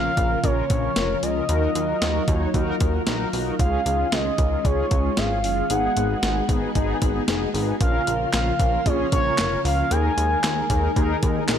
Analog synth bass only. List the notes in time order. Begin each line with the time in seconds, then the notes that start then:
0.17 A#1
0.44 A#1
0.70 A#1
0.96 F1
1.23 C#2
1.49 D#2
1.75 D#2
2.01 D#2
2.28 D#2
2.54 D#2
2.81 D#2
3.07 A#1
3.33 B1
3.59 C#2
3.86 C#2
4.12 C#2
4.38 C#2
4.65 C#2
4.91 C#2
5.17 G#1
5.44 F#1
5.70 G#1
5.96 G#1
6.23 G#1
6.49 G#1
6.75 G#1
7.02 G#1
7.28 F1
7.54 G#1
7.81 A#1
8.07 A#1
8.33 A#1
8.60 A#1
8.86 A#1
9.12 A#1
9.38 F1
9.65 C#2
9.91 D#2
10.17 D#2
10.44 D#2
10.70 D#2
10.96 D#2
11.23 D#2
11.49 A#1